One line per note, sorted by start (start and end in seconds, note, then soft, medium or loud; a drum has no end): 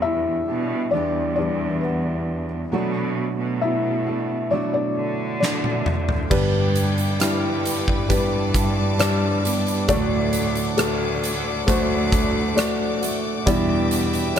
0.00 0.45 E2 medium
0.00 1.37 G3 soft
0.00 0.51 B3 soft
0.00 0.49 D4 soft
0.00 0.93 D4 soft
0.00 2.69 F#4 soft
0.00 0.47 G4 soft
0.00 0.89 E5 medium
0.05 0.90 E4 medium
0.48 0.90 B2 medium
0.48 0.92 B3 soft
0.48 0.94 D4 soft
0.48 0.93 G4 soft
0.91 2.68 E2 medium
0.91 2.72 E3 medium
0.91 2.73 B3 medium
0.91 1.36 D4 medium
0.91 1.34 D5 medium
0.95 2.73 D4 medium
0.95 2.74 G4 medium
1.36 1.79 E3 soft
1.36 1.79 G3 soft
1.36 1.80 D4 medium
1.36 1.83 D5 medium
1.81 2.47 B3 soft
1.81 2.45 B4 medium
2.72 4.07 B2 medium
2.72 3.36 B2 medium
2.72 6.27 F#3 soft
2.72 4.07 F#3 medium
2.72 6.27 A3 soft
2.72 4.07 A3 medium
2.72 4.51 D4 soft
2.72 4.08 D4 medium
2.72 4.05 F#4 medium
3.39 4.70 B2 medium
3.62 4.48 E4 medium
3.62 4.47 E5 medium
4.06 4.52 A3 soft
4.06 4.52 D4 soft
4.06 4.51 F#4 soft
4.50 6.30 B2 medium
4.50 6.31 F#3 medium
4.50 6.32 A3 medium
4.50 4.58 D4 soft
4.50 6.33 D4 medium
4.50 4.56 D5 medium
4.55 6.33 F#4 medium
4.74 5.38 D4 medium
4.74 5.37 D5 medium
4.97 6.27 D3 medium
5.40 6.05 D4 soft
5.40 6.04 D5 medium
5.40 snare soft
5.64 high tom soft
5.86 mid tom medium
6.09 floor tom medium
6.30 8.09 G2 medium
6.30 7.61 G2 medium
6.30 7.17 G2 medium
6.30 9.81 D3 medium
6.30 7.61 D3 medium
6.30 7.16 G3 medium
6.30 8.08 G3 medium
6.30 8.09 B3 medium
6.30 7.16 D4 medium
6.30 8.11 D4 medium
6.30 9.85 B4 medium
6.30 7.16 B4 medium
6.30 9.85 D5 soft
6.30 8.08 G5 medium
6.30 14.39 D6 medium
6.30 kick medium
6.30 crash medium
6.34 8.11 G4 medium
6.75 closed hi-hat medium
6.98 closed hi-hat soft
7.20 8.06 G2 medium
7.20 8.05 G3 medium
7.20 8.06 D4 medium
7.20 8.06 E4 medium
7.20 cross-stick medium
7.20 closed hi-hat medium
7.65 closed hi-hat medium
7.88 kick medium
8.09 9.85 G2 medium
8.09 9.44 G3 medium
8.09 8.95 G3 medium
8.09 9.44 B3 medium
8.09 8.95 D4 medium
8.09 9.44 D4 medium
8.09 9.42 G4 medium
8.09 8.95 B4 medium
8.09 9.87 A5 medium
8.09 kick medium
8.09 closed hi-hat medium
8.54 kick medium
8.54 closed hi-hat medium
8.99 9.84 G3 medium
8.99 9.85 D4 medium
8.99 9.85 D5 medium
8.99 cross-stick medium
8.99 closed hi-hat medium
9.43 9.89 G3 soft
9.43 9.90 B3 soft
9.43 9.89 D4 soft
9.43 9.89 G4 soft
9.43 closed hi-hat medium
9.67 closed hi-hat soft
9.88 10.75 D2 medium
9.88 11.19 A2 medium
9.88 13.38 D3 medium
9.88 11.66 F#3 medium
9.88 10.74 A3 medium
9.88 11.67 A3 medium
9.88 11.69 D4 medium
9.88 10.74 F#4 medium
9.88 13.44 A4 medium
9.88 13.44 D5 medium
9.88 10.74 D5 loud
9.88 13.44 F#5 medium
9.88 kick medium
9.88 closed hi-hat medium
9.92 11.69 F#4 medium
10.33 closed hi-hat medium
10.55 closed hi-hat soft
10.77 11.64 D2 medium
10.77 11.63 A3 medium
10.77 11.63 F#4 medium
10.77 11.63 A4 medium
10.77 cross-stick medium
10.77 closed hi-hat medium
11.24 closed hi-hat medium
11.67 12.98 D2 loud
11.67 13.02 F#3 medium
11.67 12.53 A3 medium
11.67 13.03 A3 medium
11.67 13.03 D4 medium
11.67 12.53 F#4 medium
11.67 13.00 F#4 medium
11.67 12.53 C5 medium
11.67 kick medium
11.67 closed hi-hat medium
12.12 kick medium
12.12 closed hi-hat medium
12.56 13.42 A3 medium
12.56 13.42 F#4 medium
12.56 13.42 D5 medium
12.56 cross-stick medium
12.56 closed hi-hat medium
13.01 13.47 A3 soft
13.01 13.48 D4 soft
13.01 13.47 F#4 soft
13.01 closed hi-hat medium
13.46 14.33 E2 medium
13.46 14.39 B2 medium
13.46 14.39 E3 medium
13.46 14.32 G3 medium
13.46 14.39 B3 medium
13.46 14.39 D4 medium
13.46 14.32 E4 medium
13.46 14.39 B4 medium
13.46 14.32 D5 loud
13.46 14.39 E5 medium
13.46 14.39 G5 medium
13.46 kick medium
13.46 closed hi-hat medium
13.50 14.39 G4 medium
13.91 closed hi-hat medium
14.13 closed hi-hat soft
14.36 14.39 G3 medium
14.36 14.39 E4 medium
14.36 closed hi-hat medium